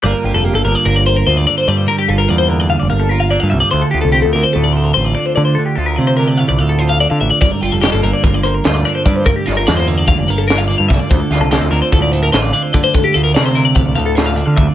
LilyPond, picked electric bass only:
\new Staff \with { instrumentName = "Picked electric bass" } { \clef bass \time 9/8 \key g \dorian \tempo 4. = 98 g,,16 r16 g,,16 f,,8 g,,16 g,,16 r16 g,,4 d,8 r8 g,8 | r8 g,,8 e,4~ e,16 f,,16 g,,4~ g,,16 g,16 c,16 r16 | d,16 r16 d,16 c,8 d,16 d,16 r16 d,4 a,,8 r8 d8 | r8 d,8 c4~ c16 c,16 d,4~ d,16 d16 a,,16 r16 |
g,,16 r16 g,,16 f,,8 g,,16 g,,16 r16 g,,4 d,8 r8 g,8 | r8 g,,8 e,4~ e,16 f,,16 g,,4~ g,,16 g,16 c,16 r16 | d,16 r16 d,16 c,8 d,16 d,16 r16 d,4 a,,8 r8 d8 | r8 d,8 c4~ c16 c,16 d,4~ d,16 d16 d,16 r16 | }